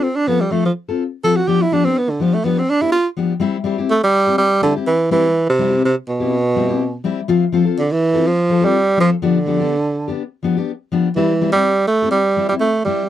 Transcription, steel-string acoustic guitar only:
0.27 F3 C4 F4 A4
0.51 F3 C4 F4 A4
0.89 C4 F4 A4
1.24 F3 C4 F4 A4
1.47 F3 B3 D4 G4
1.72 F3 B3 D4 G4
1.85 B3 D4 G4
2.20 F3 B3 D4 G4
2.44 F3 B3 D4 G4
2.82 B3 D4 G4
3.17 F3 B3 D4 G4
3.40 G3 C4 E4 G4
3.64 G3 C4 E4 G4
3.78 C4 E4 G4
4.27 C4 E4 G4
4.62 G3 C4 E4 G4
4.76 C4 E4 G4
5.10 G3 C4 E4 G4
5.59 G3 C4 E4 G4
5.71 C4 E4 G4
6.20 C4 E4 G4
6.55 G3 C4 E4 G4
6.68 C4 E4 G4
7.04 G3 C4 E4 G4
7.28 F3 C4 F4, muted steel-string acoustic guitar stroke
7.52 F3 C4 F4 A4
7.65 C4 F4 A4
8.14 C4 F4 A4
8.49 F3 C4 F4 A4
8.61 C4 F4 A4
8.97 F3 C4 F4 A4
9.22 F3 B3 D4 G4
9.46 F3 B3 D4 G4
9.60 B3 D4 G4
10.08 B3 D4 G4
10.43 F3 B3 D4 G4
10.57 B3 D4 G4
10.92 F3 B3 D4 G4
11.16 G3 C4 E4 G4
11.41 G3 C4 E4 G4
11.55 C4 E4
12.02 C4 E4 G4
12.37 G3 C4 E4 G4
12.52 C4 E4
12.86 G3 C4 E4 G4

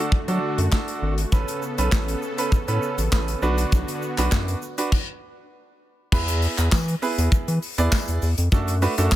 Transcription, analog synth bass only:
0.12 F#3
0.28 F#3
0.58 F#2
1.02 G#1
1.32 A1
1.78 B1
1.92 A1
2.52 A2
2.68 A2
2.98 A1
3.12 A1
3.42 B1
3.72 B1
4.18 B1
4.32 F#2
6.12 E2
6.58 E2
6.72 E3
7.18 E2
7.32 E3
7.48 E3
7.78 E2
8.08 E2
8.22 E2
8.38 F2
8.52 F#2
8.98 F#2
9.12 F#3

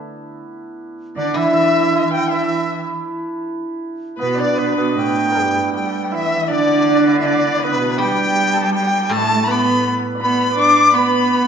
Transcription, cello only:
1.16 D3
1.36 E3
2.30 E3
4.19 B2
4.58 B2
4.77 B2
4.95 A2
5.37 G2
5.74 G3
6.13 E3
6.50 D3
7.63 B2
8.00 G3
9.11 A3
9.47 B3
10.21 B3
10.56 D4
10.93 B3

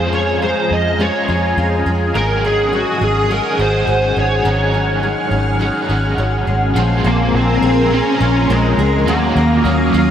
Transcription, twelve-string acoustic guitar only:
Already playing: F3 G#3 C4 F4
0.13 C4
0.42 G#3
1.00 G#3
1.28 F4
1.58 C4
1.86 G#3
2.15 D#3
2.45 C#4
2.73 G#3
3.01 C#4
3.31 G#3
3.59 F#4
3.87 C#4
4.17 G#3
4.45 D#3
4.74 C#4
5.03 G#3
5.31 C#4
5.61 G#3
5.89 F#4
6.18 C#4
6.47 G#3
6.76 F3
7.04 C4
7.62 G#4
8.20 C#4
8.50 C4
8.79 G#4
9.08 F#3
9.36 A#3
9.65 C#4
9.94 F4

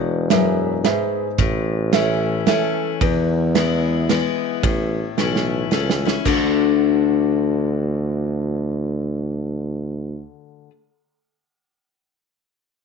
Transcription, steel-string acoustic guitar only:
Already playing: E2
0.31 F#2
0.85 G#2
1.39 A2
1.93 E3 A3 C#4 E4
2.46 E3 A3 C#4 E4
3.01 E2
3.55 E3 G#3 B3 E4
4.09 E3 G#3 B3 E4
4.64 A2
5.18 E3 A3 C#4 E4
5.71 E3 A3 C#4 E4
6.05 C#4 E4
6.25 D3 A3 D4 F#4

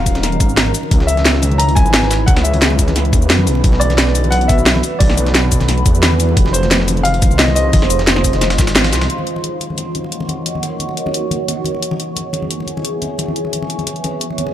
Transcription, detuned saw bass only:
Already playing: D#1
0.40 G#1
0.91 C#2
1.85 G#1
2.28 C#2
3.13 D#2
3.30 F#2
3.47 B1
3.64 B1
5.00 B1
5.86 E2
6.37 F1
7.31 C2
7.73 F1
8.59 G#1
8.93 C2

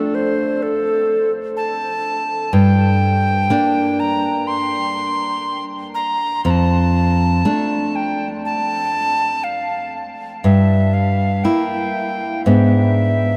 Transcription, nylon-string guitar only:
Already playing: A3 D4
2.53 G2
3.50 A#3 D4
6.45 F2
7.45 A3 D4
10.44 G2
11.44 A#3 E4
12.46 G#2 B3 D4

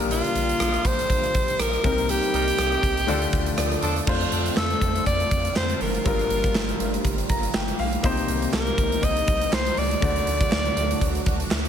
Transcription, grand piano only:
Already playing: A#2 G3 D4 F4 A#4 A#5
1.83 C3 G3 C4 D#4 A#4
3.07 D3 A3 D4 F4 D5
3.58 D5
4.06 A3 D4 F4 C5
6.05 G2 G3 D4 F4 A#4
7.30 A#5
7.55 G5
7.79 F5
8.03 C3 A#3 D#4 G4 C5
10.01 D3 A3 D4 F#4 D5

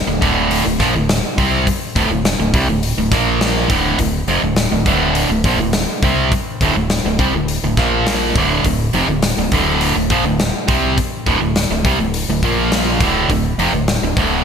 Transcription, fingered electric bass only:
0.07 D1
0.22 D1
0.66 D1
0.80 A#1
0.95 D1
1.38 C2
1.96 D1
2.09 D1
2.39 D1
2.53 C2
2.68 D1
2.97 D1
3.12 A#1
3.70 D1
3.99 D1
4.27 F1
4.42 D1
4.72 D1
4.86 D1
5.29 D1
5.44 A#1
5.57 D1
6.03 C2
6.61 D1
6.75 D1
7.04 D1
7.19 C2
7.33 D1
7.63 D1
7.77 A#1
8.35 D1
8.65 D1
8.94 F1
9.07 D1
9.37 D1
9.52 D1
9.96 D1
10.10 A#1
10.24 D1
10.69 C2
11.27 D1
11.41 D1
11.70 D1
11.85 C2
12.00 D1
12.29 D1
12.43 A#1
13.00 D1
13.29 D1
13.58 F1
13.72 D1
14.02 D1
14.17 D1

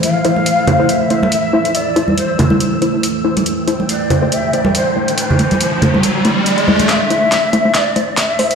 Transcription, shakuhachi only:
0.03 F5
0.89 E5
1.75 D5
2.18 C5
3.89 D5
4.32 E5
4.54 D5
4.75 C5
5.18 C5
6.46 D5
6.89 E5 F5
7.75 D5
8.18 E5

